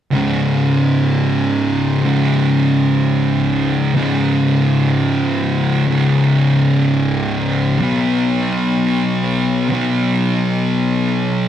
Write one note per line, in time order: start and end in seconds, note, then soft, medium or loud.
0.11 2.03 C#2 medium
0.11 2.02 G#2 medium
0.11 2.06 C#3 medium
2.03 3.93 C#2 medium
2.03 3.93 G#2 medium
2.03 3.94 C#3 medium
3.94 5.84 C#2 medium
3.94 5.85 G#2 medium
3.94 5.86 C#3 medium
5.87 7.77 C#2 medium
5.87 7.78 G#2 medium
5.87 7.78 C#3 medium
7.79 9.69 B2 medium
7.79 9.71 F#3 medium
7.79 9.73 B3 loud
9.69 11.48 B2 medium
9.69 11.48 F#3 medium
9.69 11.48 B3 medium